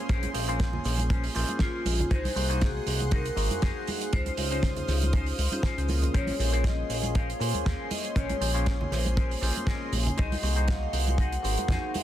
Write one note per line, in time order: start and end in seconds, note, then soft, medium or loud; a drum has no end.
0.00 0.31 A#3 loud
0.00 0.31 C#4 medium
0.00 2.07 C#4 medium
0.00 0.32 F4 medium
0.00 0.32 G#4 medium
0.00 4.09 G#4 medium
0.00 0.32 C5 loud
0.00 2.07 C6 medium
0.09 0.27 A#1 loud
0.09 0.29 C#4 loud
0.09 0.29 G#4 loud
0.09 0.29 A#4 medium
0.09 0.29 C5 loud
0.09 kick loud
0.09 closed hi-hat medium
0.09 maracas soft
0.23 closed hi-hat medium
0.23 high conga loud
0.33 0.79 A#1 loud
0.33 0.44 A#3 loud
0.33 0.44 C#4 medium
0.33 0.45 F4 medium
0.33 0.45 G#4 medium
0.33 0.45 C5 loud
0.33 open hi-hat loud
0.33 maracas medium
0.47 0.82 A#3 loud
0.47 0.82 C#4 medium
0.47 0.67 C#4 medium
0.47 0.82 F4 medium
0.47 0.67 G#4 medium
0.47 0.82 G#4 medium
0.47 0.67 A#4 medium
0.47 0.67 C5 loud
0.47 0.82 C5 loud
0.47 closed hi-hat medium
0.47 maracas soft
0.59 kick loud
0.59 snare loud
0.59 closed hi-hat medium
0.59 high conga medium
0.59 maracas soft
0.73 low conga medium
0.84 1.29 A#1 medium
0.84 1.32 A#3 medium
0.84 1.33 C#4 medium
0.84 1.33 F4 medium
0.84 1.33 G#4 medium
0.84 1.33 C5 medium
0.84 muted clean electric guitar stroke soft
0.84 snare soft
0.84 open hi-hat loud
0.84 maracas medium
0.98 closed hi-hat medium
0.98 high conga medium
0.98 maracas medium
1.09 1.23 C#4 loud
1.09 1.24 G#4 medium
1.09 1.24 A#4 medium
1.09 1.24 C5 medium
1.09 kick loud
1.09 closed hi-hat medium
1.09 maracas soft
1.24 open hi-hat medium
1.34 1.44 A#1 medium
1.34 2.09 A#3 loud
1.34 2.09 C#4 medium
1.34 2.10 F4 medium
1.34 2.10 G#4 medium
1.34 2.10 C5 loud
1.34 muted clean electric guitar stroke soft
1.34 open hi-hat loud
1.34 maracas medium
1.48 closed hi-hat medium
1.48 high conga medium
1.48 maracas medium
1.59 1.86 C#4 loud
1.59 1.85 F4 medium
1.59 1.86 G#4 medium
1.59 1.86 A#4 medium
1.59 1.86 C5 medium
1.59 kick loud
1.59 snare loud
1.59 closed hi-hat medium
1.59 maracas soft
1.85 2.03 A#1 loud
1.85 2.12 F4 medium
1.85 open hi-hat loud
1.85 high conga medium
1.85 maracas medium
1.99 closed hi-hat medium
1.99 low conga medium
1.99 maracas medium
2.10 2.28 C2 loud
2.10 2.30 D#4 loud
2.10 2.31 F#4 loud
2.10 2.30 G#4 medium
2.10 2.63 C5 loud
2.10 2.31 C5 loud
2.10 4.11 F#5 medium
2.10 4.11 C6 medium
2.10 kick loud
2.10 closed hi-hat medium
2.10 maracas soft
2.25 open hi-hat medium
2.25 high conga medium
2.35 2.80 C2 loud
2.35 2.46 A#3 loud
2.35 2.46 D#4 medium
2.35 2.46 F#4 medium
2.35 2.46 G#4 medium
2.35 2.46 C5 loud
2.35 open hi-hat loud
2.35 maracas medium
2.49 2.83 A#3 loud
2.49 2.83 D#4 medium
2.49 2.68 D#4 medium
2.49 2.84 F#4 medium
2.49 2.68 F#4 medium
2.49 2.84 G#4 medium
2.49 2.68 G#4 medium
2.49 2.68 C5 loud
2.49 2.84 C5 loud
2.49 closed hi-hat medium
2.49 maracas medium
2.61 2.69 G#4 loud
2.61 kick loud
2.61 snare loud
2.61 closed hi-hat medium
2.61 high conga medium
2.61 maracas soft
2.69 2.76 F#4 medium
2.77 3.13 G#4 loud
2.86 3.31 C2 medium
2.86 3.34 A#3 medium
2.86 3.34 D#4 medium
2.86 3.34 F#4 medium
2.86 3.34 G#4 medium
2.86 3.35 C5 medium
2.86 muted clean electric guitar stroke soft
2.86 open hi-hat loud
2.86 maracas medium
3.00 closed hi-hat medium
3.00 high conga medium
3.00 maracas medium
3.11 3.25 D#4 medium
3.11 3.25 F#4 medium
3.11 3.25 G#4 medium
3.11 3.59 A#4 loud
3.11 3.25 C5 medium
3.11 kick loud
3.11 closed hi-hat medium
3.11 maracas soft
3.25 closed hi-hat medium
3.36 3.50 G#1 medium
3.36 4.11 A#3 loud
3.36 4.11 D#4 medium
3.36 4.11 F#4 loud
3.36 4.11 G#4 loud
3.36 4.12 C5 loud
3.36 muted clean electric guitar stroke soft
3.36 open hi-hat loud
3.36 maracas medium
3.50 3.60 F2 soft
3.50 closed hi-hat medium
3.50 high conga medium
3.50 maracas medium
3.62 3.72 F2 medium
3.62 3.87 D#4 medium
3.62 3.87 F#4 medium
3.62 3.87 G#4 medium
3.62 4.14 G#4 medium
3.62 3.87 C5 medium
3.62 kick loud
3.62 snare loud
3.62 closed hi-hat medium
3.62 maracas soft
3.87 open hi-hat medium
3.87 high conga medium
3.87 maracas medium
4.00 closed hi-hat medium
4.00 maracas medium
4.12 4.30 C#2 loud
4.12 4.32 C#4 loud
4.12 4.32 D#4 loud
4.12 4.32 F4 loud
4.12 6.12 C5 medium
4.12 4.32 C5 loud
4.12 5.85 C5 loud
4.12 6.12 F5 medium
4.12 6.12 D#6 medium
4.12 kick loud
4.12 closed hi-hat medium
4.12 maracas soft
4.26 closed hi-hat medium
4.26 high conga medium
4.37 4.82 C#2 loud
4.37 4.48 C#4 loud
4.37 4.48 D#4 medium
4.37 4.48 F4 medium
4.37 4.48 G#4 medium
4.37 4.48 C5 loud
4.37 open hi-hat loud
4.37 maracas loud
4.51 4.85 C#4 loud
4.51 4.70 C#4 medium
4.51 4.85 D#4 medium
4.51 4.70 D#4 medium
4.51 4.85 F4 medium
4.51 4.70 F4 medium
4.51 4.85 G#4 medium
4.51 4.70 C5 loud
4.51 4.86 C5 loud
4.51 closed hi-hat medium
4.51 maracas medium
4.63 kick loud
4.63 snare loud
4.63 closed hi-hat medium
4.63 high conga medium
4.63 maracas soft
4.76 closed hi-hat medium
4.76 low conga medium
4.87 5.32 C#2 medium
4.87 5.35 C#4 medium
4.87 5.36 D#4 medium
4.87 5.36 F4 medium
4.87 5.36 G#4 medium
4.87 5.36 C5 medium
4.87 muted clean electric guitar stroke soft
4.87 snare soft
4.87 open hi-hat loud
4.87 maracas loud
5.02 closed hi-hat medium
5.02 high conga medium
5.02 maracas medium
5.13 5.27 C#4 medium
5.13 5.27 D#4 medium
5.13 5.27 F4 medium
5.13 5.27 C5 medium
5.13 kick loud
5.13 closed hi-hat medium
5.13 maracas soft
5.26 open hi-hat medium
5.38 5.48 C#2 medium
5.38 muted clean electric guitar stroke soft
5.38 open hi-hat loud
5.38 maracas medium
5.52 5.74 C#4 medium
5.52 5.74 D#4 medium
5.52 5.74 F4 medium
5.52 5.74 G#4 medium
5.52 5.74 C5 loud
5.52 closed hi-hat medium
5.52 high conga medium
5.52 maracas soft
5.63 5.89 C#4 medium
5.63 5.89 D#4 medium
5.63 5.89 F4 medium
5.63 5.89 C5 medium
5.63 kick loud
5.63 snare loud
5.63 closed hi-hat medium
5.63 maracas soft
5.77 6.08 C#2 medium
5.77 5.86 C#4 medium
5.77 5.86 D#4 medium
5.77 5.86 F4 medium
5.77 5.87 G#4 medium
5.77 5.87 C5 medium
5.77 closed hi-hat medium
5.88 6.36 A#3 medium
5.88 6.37 C#4 medium
5.88 6.37 F4 medium
5.88 6.37 G#4 medium
5.88 6.37 A#4 medium
5.88 open hi-hat medium
5.88 high conga medium
5.88 maracas loud
6.02 closed hi-hat medium
6.02 low conga medium
6.02 maracas medium
6.13 6.32 A#1 loud
6.13 6.33 C#4 loud
6.13 10.13 C#4 medium
6.13 12.03 G#4 medium
6.13 6.33 G#4 medium
6.13 6.33 A#4 medium
6.13 6.34 C5 loud
6.13 6.61 C#5 loud
6.13 12.03 C6 medium
6.13 kick loud
6.13 closed hi-hat medium
6.13 maracas soft
6.27 open hi-hat medium
6.27 high conga medium
6.39 6.84 A#1 loud
6.39 6.50 A#3 medium
6.39 6.50 C#4 medium
6.39 6.50 F4 medium
6.39 6.50 G#4 medium
6.39 6.50 C5 loud
6.39 open hi-hat loud
6.39 maracas loud
6.52 6.87 A#3 loud
6.52 6.87 C#4 medium
6.52 6.71 C#4 medium
6.52 6.87 F4 medium
6.52 6.71 G#4 medium
6.52 6.87 G#4 medium
6.52 6.72 A#4 medium
6.52 6.71 C5 loud
6.52 6.87 C5 loud
6.52 closed hi-hat medium
6.52 maracas medium
6.64 7.17 D#5 loud
6.64 kick loud
6.64 snare loud
6.64 closed hi-hat medium
6.64 high conga medium
6.64 maracas soft
6.90 7.34 A#1 medium
6.90 7.37 A#3 medium
6.90 7.38 C#4 medium
6.90 7.38 F4 medium
6.90 7.38 G#4 medium
6.90 7.38 C5 medium
6.90 muted clean electric guitar stroke soft
6.90 open hi-hat loud
6.90 maracas medium
7.03 closed hi-hat medium
7.03 high conga medium
7.03 maracas medium
7.15 7.29 C#4 medium
7.15 7.29 G#4 medium
7.15 7.29 A#4 medium
7.15 7.29 C5 medium
7.15 7.87 F5 loud
7.15 kick loud
7.15 closed hi-hat medium
7.15 maracas soft
7.30 closed hi-hat medium
7.39 7.53 A#2 medium
7.39 8.38 A#3 loud
7.39 8.38 C#4 medium
7.39 8.38 F4 medium
7.39 8.39 G#4 medium
7.39 8.39 C5 loud
7.39 muted clean electric guitar stroke soft
7.39 open hi-hat loud
7.39 maracas medium
7.54 7.63 D#2 soft
7.54 closed hi-hat medium
7.54 high conga medium
7.54 maracas medium
7.65 7.75 D#2 medium
7.65 7.91 C#4 medium
7.65 7.91 G#4 medium
7.65 7.91 A#4 medium
7.65 7.91 C5 medium
7.65 kick loud
7.65 snare loud
7.65 closed hi-hat medium
7.65 maracas soft
7.91 8.17 D#5 loud
7.91 open hi-hat loud
7.91 high conga medium
7.91 maracas loud
8.05 closed hi-hat medium
8.05 maracas soft
8.15 8.33 A#1 loud
8.15 8.35 C#4 loud
8.15 8.35 G#4 loud
8.15 8.35 A#4 medium
8.15 8.35 C5 loud
8.15 8.94 C#5 loud
8.15 kick loud
8.15 closed hi-hat medium
8.15 maracas soft
8.30 closed hi-hat medium
8.30 high conga loud
8.40 8.85 A#1 loud
8.40 8.51 A#3 loud
8.40 8.51 C#4 medium
8.40 8.51 F4 medium
8.40 8.52 G#4 medium
8.40 8.52 C5 loud
8.40 open hi-hat loud
8.40 maracas medium
8.54 8.88 A#3 loud
8.54 8.89 C#4 medium
8.54 8.73 C#4 medium
8.54 8.89 F4 medium
8.54 8.89 G#4 medium
8.54 8.73 G#4 medium
8.54 8.73 A#4 medium
8.54 8.73 C5 loud
8.54 8.89 C#5 loud
8.54 closed hi-hat medium
8.54 maracas medium
8.66 kick loud
8.66 snare loud
8.66 closed hi-hat medium
8.66 high conga medium
8.66 maracas soft
8.81 low conga medium
8.91 9.36 A#1 medium
8.91 9.39 A#3 medium
8.91 9.39 C#4 medium
8.91 9.39 F4 medium
8.91 9.39 G#4 medium
8.91 9.39 C5 medium
8.91 muted clean electric guitar stroke soft
8.91 snare soft
8.91 open hi-hat loud
8.91 maracas medium
9.05 closed hi-hat medium
9.05 high conga medium
9.05 maracas medium
9.16 9.30 C#4 loud
9.16 9.30 G#4 medium
9.16 9.30 A#4 medium
9.16 9.30 C5 medium
9.16 kick loud
9.16 closed hi-hat medium
9.16 maracas soft
9.31 open hi-hat medium
9.41 9.51 A#1 medium
9.41 10.16 A#3 loud
9.41 10.16 C#4 medium
9.41 10.16 F4 medium
9.41 10.17 G#4 medium
9.41 10.17 C5 loud
9.41 muted clean electric guitar stroke soft
9.41 open hi-hat loud
9.41 maracas medium
9.56 closed hi-hat medium
9.56 high conga medium
9.56 maracas soft
9.67 9.92 C#4 medium
9.67 9.92 G#4 medium
9.67 9.93 A#4 medium
9.67 9.92 D#5 medium
9.67 kick loud
9.67 snare loud
9.67 closed hi-hat medium
9.67 maracas soft
9.92 10.10 A#1 loud
9.92 open hi-hat loud
9.92 high conga medium
9.92 maracas medium
10.07 closed hi-hat medium
10.07 low conga medium
10.07 maracas medium
10.17 10.36 C2 loud
10.17 10.37 D#4 loud
10.17 10.37 F#4 loud
10.17 12.03 F#4 medium
10.17 10.37 G#4 loud
10.17 10.37 C5 loud
10.17 10.70 D#5 loud
10.17 kick loud
10.17 closed hi-hat medium
10.17 maracas soft
10.32 open hi-hat medium
10.32 high conga loud
10.42 10.87 C2 loud
10.42 10.53 A#3 loud
10.42 10.53 D#4 medium
10.42 10.53 F#4 medium
10.42 10.53 G#4 medium
10.42 10.53 C5 loud
10.42 open hi-hat loud
10.42 maracas medium
10.56 10.90 A#3 medium
10.56 10.90 D#4 medium
10.56 10.75 D#4 medium
10.56 10.90 F#4 medium
10.56 10.75 F#4 medium
10.56 10.91 G#4 medium
10.56 10.75 G#4 medium
10.56 10.75 C5 loud
10.56 10.91 C5 loud
10.56 closed hi-hat medium
10.56 maracas soft
10.67 10.76 F5 loud
10.67 kick loud
10.67 snare loud
10.67 closed hi-hat medium
10.67 high conga medium
10.67 maracas soft
10.75 10.83 D#5 medium
10.83 11.20 F5 loud
10.93 11.37 C2 medium
10.93 11.41 A#3 medium
10.93 11.41 D#4 medium
10.93 11.41 F#4 medium
10.93 11.41 G#4 medium
10.93 11.41 C5 medium
10.93 muted clean electric guitar stroke soft
10.93 open hi-hat loud
10.93 maracas loud
11.07 closed hi-hat medium
11.07 high conga medium
11.07 maracas medium
11.18 11.32 D#4 medium
11.18 11.32 F#4 medium
11.18 11.32 G#4 medium
11.18 11.32 C5 loud
11.18 11.96 F#5 loud
11.18 kick loud
11.18 closed hi-hat medium
11.18 maracas soft
11.32 closed hi-hat medium
11.43 11.57 G#1 medium
11.43 12.03 A#3 loud
11.43 12.03 D#4 medium
11.43 12.03 F#4 medium
11.43 12.03 G#4 medium
11.43 12.03 C5 loud
11.43 muted clean electric guitar stroke soft
11.43 open hi-hat loud
11.43 maracas medium
11.57 11.67 F2 soft
11.57 closed hi-hat medium
11.57 high conga medium
11.57 maracas soft
11.68 11.78 F2 medium
11.68 11.94 D#4 medium
11.68 11.94 F#4 medium
11.68 11.94 G#4 medium
11.68 11.94 C5 medium
11.68 kick loud
11.68 snare loud
11.68 closed hi-hat medium
11.68 maracas soft
11.94 12.03 F5 loud
11.94 open hi-hat loud
11.94 high conga loud
11.94 maracas medium